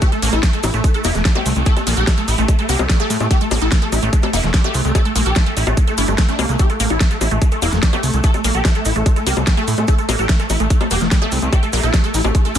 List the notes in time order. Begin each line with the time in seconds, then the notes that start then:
Already playing: A3
0.02 A3 G4, kick, closed hi-hat, cabasa
0.12 A3 A4, closed hi-hat, cabasa
0.22 A1 A3 A#3, open hi-hat, cabasa
0.33 A1 E4 A4, high bongo, cabasa
0.43 A3, kick, snare, closed hi-hat, cabasa
0.53 A3 A4, closed hi-hat, cabasa
0.63 A1 E4, open hi-hat, high bongo, cabasa
0.74 A1 A3, closed hi-hat, cabasa
0.84 A3, kick, closed hi-hat, cabasa
0.94 A3 A4, closed hi-hat, cabasa
1.04 E1 A#3 E4, open hi-hat, high bongo, cabasa
1.15 E1 A3, snare, closed hi-hat, cabasa
1.25 G3 A3, kick, snare, closed hi-hat, cabasa
1.35 A3 G4, closed hi-hat, high bongo, cabasa
1.46 C2 A3, open hi-hat, cabasa
1.56 C2 A3, closed hi-hat, cabasa
1.66 A3 A4, kick, closed hi-hat, cabasa
1.76 A3 A4, closed hi-hat, high bongo, cabasa
1.87 A#1 A3 A#3, open hi-hat, cabasa
1.97 A#1 G4 A4, closed hi-hat, cabasa
2.07 A3, kick, snare, closed hi-hat, high bongo, cabasa
2.17 A3 A4, closed hi-hat, cabasa
2.28 A1 E4, open hi-hat, cabasa
2.38 A1 A3, closed hi-hat, cabasa
2.48 A3, kick, closed hi-hat, high bongo, cabasa
2.59 A3 A4, closed hi-hat, cabasa
2.69 C2 A#3 G4, open hi-hat, cabasa
2.79 C2 A3, closed hi-hat, high bongo, cabasa
2.90 G3 A3, kick, snare, closed hi-hat, cabasa
3.00 A3 A4, closed hi-hat, cabasa
3.10 A2 A3, open hi-hat, cabasa
3.20 A2 A3, closed hi-hat, high bongo, cabasa
3.31 A3 G4, kick, closed hi-hat, cabasa
3.41 A3 A4, closed hi-hat, cabasa
3.51 A1 A3 A#3, open hi-hat, high bongo, cabasa
3.61 A1 E4 A4, closed hi-hat, cabasa
3.71 A3, kick, snare, closed hi-hat, cabasa
3.82 A3 A4, closed hi-hat, cabasa
3.92 A1 E4, open hi-hat, high bongo, cabasa
4.02 A1 A3, closed hi-hat, cabasa
4.13 A3, kick, closed hi-hat, cabasa
4.22 A3 A4, closed hi-hat, high bongo, cabasa
4.33 E1 A#3 E4, open hi-hat, cabasa
4.43 E1 A3, snare, closed hi-hat, cabasa
4.53 G3 A3, kick, snare, closed hi-hat, cabasa
4.64 A3 G4, closed hi-hat, high bongo, cabasa
4.74 C2 A3, open hi-hat, cabasa
4.85 C2 A3, closed hi-hat, cabasa
4.95 A3 A4, kick, closed hi-hat, high bongo, cabasa
5.05 A3 A4, closed hi-hat, cabasa
5.16 A#1 A3 A#3, open hi-hat, cabasa
5.26 A#1 G4 A4, closed hi-hat, cabasa
5.35 A3, kick, snare, closed hi-hat, high bongo, cabasa
5.46 A3 A4, closed hi-hat, cabasa
5.57 A1 E4, open hi-hat, cabasa
5.67 A1 A3, closed hi-hat, high bongo, cabasa
5.77 A3, kick, closed hi-hat, swell, cabasa
5.87 A3 A4, closed hi-hat, cabasa
5.98 G1 D4 E4, open hi-hat, cabasa
6.08 G1 A3, closed hi-hat, high bongo, cabasa
6.18 A3, kick, snare, closed hi-hat, cabasa
6.29 A3 D4, closed hi-hat, cabasa
6.39 C2 A3 A#3, open hi-hat, high bongo, cabasa
6.49 C2 A3 A#3, closed hi-hat, cabasa
6.59 A3 G4 A4, kick, closed hi-hat, cabasa
6.70 A3 A4, closed hi-hat, cabasa
6.80 A1 A3 A#3, open hi-hat, cabasa
6.90 A1 E4 A4, closed hi-hat, high bongo, cabasa
7.00 A3, kick, snare, closed hi-hat, cabasa
7.11 A3 A4, closed hi-hat, cabasa
7.21 A1 E4, open hi-hat, high bongo, cabasa
7.31 A1 A3, closed hi-hat, cabasa
7.42 A3, kick, closed hi-hat, cabasa
7.51 A3 A4, closed hi-hat, cabasa
7.62 E1 A#3 E4, open hi-hat, high bongo, cabasa
7.72 E1 A3, snare, closed hi-hat, cabasa
7.83 G3 A3, kick, snare, closed hi-hat, cabasa
7.93 A3 G4, closed hi-hat, high bongo, cabasa
8.03 C2 A3, open hi-hat, cabasa
8.13 C2 A3, closed hi-hat, cabasa
8.23 A3 A4, kick, closed hi-hat, cabasa
8.34 A3 A4, closed hi-hat, high bongo, cabasa
8.44 A#1 A3 A#3, open hi-hat, cabasa
8.55 A#1 G4 A4, cabasa
8.65 A3, kick, snare, closed hi-hat, high bongo, cabasa
8.75 A3 A4, closed hi-hat, cabasa
8.85 A1 E4, open hi-hat, cabasa
8.95 A1 A3, closed hi-hat, cabasa
9.06 A3, kick, closed hi-hat, high bongo, cabasa
9.16 A3 A4, closed hi-hat, cabasa
9.27 C2 A#3 G4, open hi-hat, cabasa
9.36 C2 A3, closed hi-hat, high bongo, cabasa
9.47 G3 A3, kick, snare, closed hi-hat, cabasa
9.57 A3 A4, closed hi-hat, cabasa
9.68 A2 A3, open hi-hat, cabasa
9.77 A2 A3, closed hi-hat, high bongo, cabasa
9.88 A3 G4 A4, kick, closed hi-hat, cabasa
9.98 A3 A4, closed hi-hat, cabasa
10.09 A1 A3 A#3, open hi-hat, high bongo, cabasa
10.19 A1 G4 A4, closed hi-hat, cabasa
10.29 A3, kick, snare, closed hi-hat, cabasa
10.39 A3 A4, closed hi-hat, cabasa
10.50 A1 E4, open hi-hat, high bongo, cabasa
10.60 A1 A3, closed hi-hat, cabasa
10.70 A3, kick, closed hi-hat, cabasa
10.80 A3 A4, closed hi-hat, high bongo, cabasa
10.91 E1 A#3 G4, open hi-hat, cabasa
11.01 E1 A3, snare, closed hi-hat, cabasa
11.11 G3 A3, kick, snare, closed hi-hat, cabasa
11.22 A3 A4, closed hi-hat, high bongo, cabasa
11.32 C2 A3, open hi-hat, cabasa
11.42 C2 A3, closed hi-hat, cabasa
11.52 A3 G4, kick, closed hi-hat, high bongo, cabasa
11.63 A3 A4, closed hi-hat, cabasa
11.73 A#1 A3 A#3, open hi-hat, cabasa
11.83 A#1 E4 A4, closed hi-hat, cabasa
11.94 A3, kick, snare, closed hi-hat, high bongo, cabasa
12.04 A3 A4, closed hi-hat, cabasa
12.14 A1 E4, open hi-hat, cabasa
12.24 A1 A3, closed hi-hat, high bongo, cabasa
12.35 A3, kick, closed hi-hat, cabasa
12.45 A3 A4, closed hi-hat, cabasa
12.55 G1 A#3 D4, open hi-hat, zap, cabasa